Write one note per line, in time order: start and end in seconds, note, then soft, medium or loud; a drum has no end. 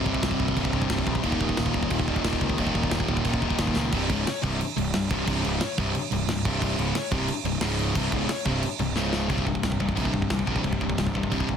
0.00 0.72 C2 loud
0.00 0.73 G2 loud
0.00 0.72 C3 loud
0.06 0.19 C1 loud
0.06 kick medium
0.14 kick medium
0.23 0.36 C1 loud
0.23 kick medium
0.23 snare loud
0.23 crash medium
0.31 kick loud
0.40 0.52 C1 loud
0.40 kick medium
0.48 kick medium
0.56 0.69 C1 loud
0.56 1.23 C2 medium
0.56 1.24 G2 medium
0.56 1.24 C3 medium
0.56 kick medium
0.56 crash medium
0.65 kick medium
0.73 0.86 C1 medium
0.73 0.89 C2 medium
0.73 0.90 G2 medium
0.73 0.89 C3 medium
0.73 kick medium
0.82 kick medium
0.90 1.03 C1 medium
0.90 1.22 C2 medium
0.90 1.23 G2 medium
0.90 1.24 C3 medium
0.90 kick loud
0.90 snare loud
0.90 crash medium
0.98 kick medium
1.07 1.19 A#1 medium
1.07 kick loud
1.15 kick medium
1.23 1.36 D#1 loud
1.23 2.06 D#2 loud
1.23 2.07 A#2 loud
1.23 2.07 D#3 loud
1.23 kick loud
1.23 crash medium
1.32 kick medium
1.41 1.53 D#1 medium
1.41 kick medium
1.49 kick loud
1.57 1.70 D#1 loud
1.57 kick medium
1.57 snare loud
1.57 crash medium
1.66 kick medium
1.74 1.87 D#1 loud
1.74 kick medium
1.83 kick medium
1.90 2.04 D#1 medium
1.90 2.56 D#2 medium
1.90 2.58 A#2 medium
1.90 kick medium
1.90 crash medium
1.94 2.59 D#3 medium
2.00 kick loud
2.08 2.20 D#1 medium
2.08 2.23 D#2 medium
2.08 2.23 A#2 medium
2.08 2.24 D#3 medium
2.08 kick medium
2.16 kick medium
2.24 2.37 D#1 medium
2.24 2.57 D#2 medium
2.24 2.57 A#2 medium
2.24 2.58 D#3 medium
2.24 kick loud
2.24 snare loud
2.24 crash medium
2.33 kick medium
2.41 2.54 C#2 medium
2.41 kick loud
2.50 kick medium
2.58 2.71 D#1 loud
2.58 3.41 D#2 medium
2.58 3.42 A#2 loud
2.58 3.40 D#3 loud
2.58 kick medium
2.58 crash medium
2.67 kick medium
2.75 2.88 D#1 medium
2.75 kick medium
2.83 kick medium
2.91 3.04 D#1 medium
2.91 kick medium
2.91 snare loud
2.91 crash medium
3.00 kick medium
3.08 3.21 D#1 loud
3.08 kick medium
3.17 kick medium
3.23 3.38 D#1 loud
3.23 3.91 D#2 medium
3.23 3.92 A#2 medium
3.23 kick medium
3.23 crash medium
3.28 3.93 D#3 medium
3.34 kick medium
3.41 3.55 D#1 medium
3.41 3.58 D#2 medium
3.41 3.58 A#2 medium
3.41 3.58 D#3 medium
3.41 kick medium
3.50 kick medium
3.59 3.72 D#1 medium
3.59 3.92 D#2 medium
3.59 3.92 A#2 loud
3.59 3.93 D#3 medium
3.59 kick medium
3.59 snare loud
3.59 crash medium
3.67 kick medium
3.76 3.88 C#2 loud
3.76 snare medium
3.92 4.08 C1 loud
3.92 4.09 C2 loud
3.92 4.09 G2 loud
3.92 4.09 C3 loud
3.92 kick loud
3.92 crash medium
4.10 4.26 C#1 loud
4.10 4.26 C#2 loud
4.10 4.26 G#2 loud
4.10 4.26 C#3 loud
4.10 kick loud
4.10 crash medium
4.27 muted distorted electric guitar stroke medium
4.27 muted overdriven electric guitar stroke medium
4.27 muted picked electric bass stroke soft
4.27 snare loud
4.27 crash medium
4.42 4.59 C1 loud
4.42 4.59 C2 loud
4.42 4.59 G2 loud
4.42 4.59 C3 loud
4.42 kick loud
4.42 crash medium
4.61 crash medium
4.77 4.93 C1 medium
4.77 4.90 C2 medium
4.77 4.90 G2 medium
4.77 crash medium
4.94 5.10 C1 medium
4.94 5.07 C2 medium
4.94 5.07 G2 medium
4.94 snare loud
4.94 crash medium
5.11 5.26 C1 loud
5.11 5.27 C2 loud
5.11 5.27 G2 medium
5.11 5.27 C3 loud
5.11 kick loud
5.11 crash medium
5.27 5.43 C1 loud
5.27 5.44 C2 medium
5.27 5.44 G2 loud
5.27 5.44 C3 loud
5.27 kick loud
5.27 crash medium
5.44 5.60 C#1 loud
5.44 5.60 C#2 loud
5.44 5.61 G#2 loud
5.44 5.61 C#3 loud
5.44 crash medium
5.61 muted overdriven electric guitar stroke medium
5.61 muted distorted electric guitar stroke medium
5.61 muted picked electric bass stroke soft
5.61 snare loud
5.61 crash medium
5.78 5.93 C1 loud
5.78 5.94 C2 loud
5.78 5.95 G2 loud
5.78 5.95 C3 loud
5.78 kick loud
5.78 crash medium
5.95 crash medium
6.12 6.27 C1 medium
6.12 6.25 C2 medium
6.12 6.25 G2 medium
6.12 crash medium
6.28 6.43 C1 medium
6.28 6.42 C2 medium
6.28 6.42 G2 medium
6.28 snare loud
6.28 crash medium
6.45 6.61 C1 loud
6.45 6.61 C2 medium
6.45 6.61 G2 loud
6.45 6.62 C3 loud
6.45 kick loud
6.45 crash medium
6.62 6.77 C1 loud
6.62 6.77 C2 loud
6.62 6.78 G2 loud
6.62 6.78 C3 loud
6.62 kick loud
6.62 crash medium
6.78 6.93 C#1 loud
6.78 6.94 C#2 medium
6.78 6.95 G#2 loud
6.78 6.95 C#3 loud
6.78 crash medium
6.95 muted picked electric bass stroke soft
6.95 muted distorted electric guitar stroke medium
6.95 muted overdriven electric guitar stroke medium
6.95 snare loud
6.95 crash medium
7.12 7.28 C1 loud
7.12 7.28 C2 medium
7.12 7.28 G2 loud
7.12 7.28 C3 loud
7.12 kick loud
7.12 crash medium
7.28 crash medium
7.44 7.60 C1 medium
7.44 7.59 C2 medium
7.44 7.59 G2 medium
7.44 crash medium
7.60 7.92 C#1 loud
7.60 7.95 C#2 medium
7.60 7.95 G#2 loud
7.60 7.95 C#3 loud
7.60 snare loud
7.60 crash loud
7.79 crash medium
7.95 8.11 C1 medium
7.95 8.12 C2 loud
7.95 8.12 G2 loud
7.95 8.12 C3 loud
7.95 kick loud
7.95 crash medium
8.12 8.27 C#1 loud
8.12 8.28 C#2 medium
8.12 8.28 G#2 loud
8.12 8.29 C#3 loud
8.12 kick loud
8.12 crash medium
8.28 muted picked electric bass stroke soft
8.28 muted overdriven electric guitar stroke medium
8.28 muted distorted electric guitar stroke medium
8.28 snare loud
8.28 crash medium
8.46 8.61 C1 loud
8.46 8.62 C2 loud
8.46 8.62 G2 loud
8.46 8.62 C3 loud
8.46 kick loud
8.46 crash medium
8.63 crash medium
8.79 8.95 C1 medium
8.79 8.93 C2 medium
8.79 8.93 G2 medium
8.79 crash medium
8.96 9.30 C#1 medium
8.96 9.27 C#2 medium
8.96 9.28 G#2 loud
8.96 9.28 C#3 loud
8.96 snare medium
9.13 snare loud
9.28 9.52 C1 loud
9.28 9.44 C2 medium
9.28 9.45 G2 medium
9.28 9.45 C3 loud
9.28 kick medium
9.28 crash medium
9.33 9.79 C3 loud
9.38 kick medium
9.46 9.61 C2 medium
9.46 9.62 G2 medium
9.46 kick medium
9.55 kick medium
9.63 9.74 C1 medium
9.63 9.78 C2 medium
9.63 9.79 G2 medium
9.63 kick medium
9.63 snare loud
9.63 crash medium
9.72 kick medium
9.80 9.91 C1 medium
9.80 9.94 C2 medium
9.80 9.95 G2 medium
9.80 10.30 C3 medium
9.80 kick medium
9.89 kick medium
9.96 10.08 A#1 medium
9.96 10.11 C2 medium
9.96 10.12 G2 medium
9.96 10.13 C3 loud
9.96 kick medium
9.96 crash medium
10.05 kick medium
10.13 10.24 C1 medium
10.13 10.28 C2 medium
10.13 10.28 G2 medium
10.13 kick medium
10.22 kick medium
10.30 10.45 C2 medium
10.30 10.42 C2 medium
10.30 10.45 G2 medium
10.30 10.65 C3 medium
10.30 kick medium
10.30 snare loud
10.30 crash medium
10.39 kick medium
10.46 10.58 A#1 medium
10.46 10.63 C2 medium
10.46 10.63 G2 medium
10.46 10.63 C3 medium
10.46 kick medium
10.56 kick medium
10.64 10.75 C1 medium
10.64 10.79 C2 medium
10.64 10.79 G2 medium
10.64 11.14 C3 loud
10.64 kick medium
10.64 crash medium
10.73 kick medium
10.81 10.92 C1 medium
10.81 10.96 C2 medium
10.81 10.97 G2 medium
10.81 kick medium
10.90 kick medium
10.98 11.19 C1 medium
10.98 11.14 C2 medium
10.98 11.14 G2 medium
10.98 kick medium
10.98 snare loud
10.98 crash medium
11.07 kick medium
11.15 11.30 C2 medium
11.15 11.31 G2 medium
11.15 11.57 C3 medium
11.15 kick medium
11.23 kick medium
11.31 11.43 C1 medium
11.31 11.47 C2 medium
11.31 11.47 G2 loud
11.31 11.47 C3 loud
11.31 kick medium
11.31 crash medium
11.40 kick medium
11.49 11.57 C1 medium
11.49 11.57 C2 medium
11.49 11.57 G2 medium
11.49 kick medium